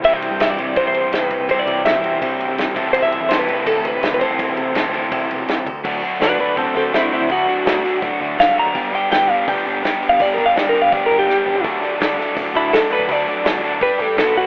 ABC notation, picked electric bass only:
X:1
M:4/4
L:1/16
Q:1/4=166
K:Dmix
V:1 name="Picked electric bass" clef=bass
C,,3 G,,3 C,,3 E,,2 z E,,2 z C,,- | C,,2 C,3 E,,3 C,,3 C,2 z C,,2 | C,,3 E,,3 C,,3 D,,2 z D,,2 z C,,- | C,,2 C,3 D,,3 C,,2 B,,,2 C,,2 D,,2 |
D,,2 z2 D,,2 z2 A,,, z D,,2 z3 D,, | D,,2 z2 D,,2 z2 A,,, z D,,2 z3 D,, | G,,,2 z2 G,,,2 z2 D,, z G,,,2 z3 G,,, | G,,,2 z2 G,,,2 z2 D,, z G,,,2 z3 G,,, |
D,,2 z2 D,,2 z2 A,,, z D,,2 z3 D,, | D,,2 z2 _A,,,2 z2 G,,, z =A,,, z B,,,3 z |]